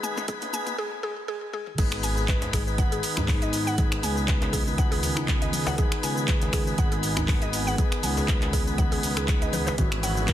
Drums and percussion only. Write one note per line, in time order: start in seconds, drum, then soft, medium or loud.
0.03 mid tom medium
0.03 cabasa loud
0.17 mid tom medium
0.17 djembe slap medium
0.17 djembe tone medium
0.17 cabasa soft
0.28 kick loud
0.28 closed hi-hat medium
0.28 mid tom medium
0.28 cabasa medium
0.42 closed hi-hat soft
0.42 mid tom medium
0.42 djembe tone medium
0.42 cabasa soft
0.53 mid tom loud
0.53 cabasa medium
0.67 closed hi-hat soft
0.67 mid tom medium
0.67 cabasa soft
1.53 high tom medium
1.67 mid tom medium
1.78 kick loud
1.78 closed hi-hat medium
1.78 mid tom medium
1.78 crash loud
1.78 cabasa medium
1.92 finger snap loud
1.92 closed hi-hat soft
1.92 cabasa soft
2.03 open hi-hat medium
2.03 cabasa medium
2.17 cabasa soft
2.28 kick loud
2.28 clap loud
2.28 closed hi-hat medium
2.28 cabasa medium
2.42 closed hi-hat soft
2.42 djembe slap medium
2.42 cabasa soft
2.53 finger snap medium
2.53 kick medium
2.53 open hi-hat medium
2.53 cabasa medium
2.68 cabasa soft
2.78 kick loud
2.78 closed hi-hat medium
2.78 cabasa medium
2.92 closed hi-hat soft
2.92 cabasa soft
3.03 open hi-hat medium
3.03 cabasa medium
3.17 finger snap loud
3.17 djembe tone loud
3.17 cabasa soft
3.28 kick loud
3.28 clap loud
3.28 open hi-hat medium
3.28 djembe slap medium
3.28 cabasa medium
3.42 closed hi-hat soft
3.42 cabasa soft
3.53 open hi-hat medium
3.53 cabasa medium
3.67 cabasa soft
3.78 kick loud
3.78 closed hi-hat medium
3.78 mid tom medium
3.78 cabasa medium
3.92 finger snap loud
3.92 closed hi-hat soft
3.92 cabasa soft
4.03 open hi-hat medium
4.03 cabasa loud
4.17 cabasa soft
4.28 kick loud
4.28 clap loud
4.28 closed hi-hat medium
4.28 cabasa medium
4.42 clap soft
4.42 closed hi-hat soft
4.42 djembe slap medium
4.42 cabasa soft
4.53 kick medium
4.53 open hi-hat medium
4.53 djembe tone medium
4.53 cabasa loud
4.67 cabasa soft
4.78 kick loud
4.78 closed hi-hat medium
4.78 cabasa medium
4.92 open hi-hat medium
4.92 djembe tone medium
4.92 cabasa soft
5.03 open hi-hat medium
5.03 djembe tone medium
5.03 cabasa loud
5.17 finger snap loud
5.17 cabasa soft
5.28 kick loud
5.28 clap medium
5.28 closed hi-hat medium
5.28 cabasa medium
5.42 closed hi-hat soft
5.42 djembe tone medium
5.42 cabasa soft
5.53 open hi-hat medium
5.53 mid tom medium
5.53 cabasa medium
5.67 djembe slap loud
5.67 cabasa soft
5.78 kick loud
5.78 closed hi-hat medium
5.78 mid tom medium
5.78 cabasa medium
5.92 finger snap medium
5.92 closed hi-hat soft
5.92 cabasa soft
6.03 open hi-hat medium
6.03 cabasa loud
6.17 cabasa soft
6.28 kick loud
6.28 clap loud
6.28 closed hi-hat medium
6.28 cabasa medium
6.42 closed hi-hat soft
6.42 djembe slap medium
6.42 cabasa soft
6.53 finger snap medium
6.53 kick medium
6.53 open hi-hat medium
6.53 cabasa loud
6.67 cabasa soft
6.78 kick loud
6.78 closed hi-hat medium
6.78 cabasa medium
6.92 closed hi-hat soft
6.92 cabasa soft
7.03 open hi-hat medium
7.03 cabasa medium
7.17 finger snap loud
7.17 djembe tone medium
7.17 cabasa soft
7.28 kick loud
7.28 clap loud
7.28 open hi-hat soft
7.28 djembe slap medium
7.28 cabasa medium
7.42 closed hi-hat soft
7.42 cabasa soft
7.53 open hi-hat medium
7.53 cabasa loud
7.67 cabasa soft
7.78 kick loud
7.78 closed hi-hat medium
7.78 mid tom medium
7.78 cabasa medium
7.92 finger snap medium
7.92 closed hi-hat soft
7.92 cabasa soft
8.03 open hi-hat medium
8.03 cabasa loud
8.17 djembe slap medium
8.17 cabasa soft
8.28 kick loud
8.28 clap loud
8.28 closed hi-hat medium
8.28 cabasa medium
8.42 clap soft
8.42 closed hi-hat soft
8.42 djembe slap medium
8.42 cabasa soft
8.53 kick medium
8.53 open hi-hat medium
8.53 djembe tone medium
8.53 cabasa medium
8.67 cabasa soft
8.78 kick loud
8.78 closed hi-hat medium
8.78 mid tom medium
8.78 djembe tone medium
8.78 cabasa medium
8.92 open hi-hat medium
8.92 djembe tone medium
8.92 cabasa soft
9.03 open hi-hat medium
9.03 djembe tone medium
9.03 cabasa loud
9.17 finger snap loud
9.17 cabasa soft
9.28 kick loud
9.28 clap loud
9.28 closed hi-hat medium
9.28 cabasa medium
9.42 closed hi-hat soft
9.42 djembe tone medium
9.42 cabasa soft
9.53 open hi-hat medium
9.53 mid tom loud
9.53 cabasa medium
9.67 djembe slap loud
9.67 cabasa soft
9.78 kick loud
9.78 closed hi-hat medium
9.78 mid tom medium
9.78 muted conga soft
9.78 low conga medium
9.78 cabasa medium
9.92 finger snap medium
9.92 closed hi-hat soft
9.92 cabasa soft
10.03 open hi-hat medium
10.03 cabasa loud
10.17 muted conga soft
10.17 low conga medium
10.17 cabasa soft
10.28 kick loud
10.28 clap loud
10.28 closed hi-hat medium
10.28 cabasa medium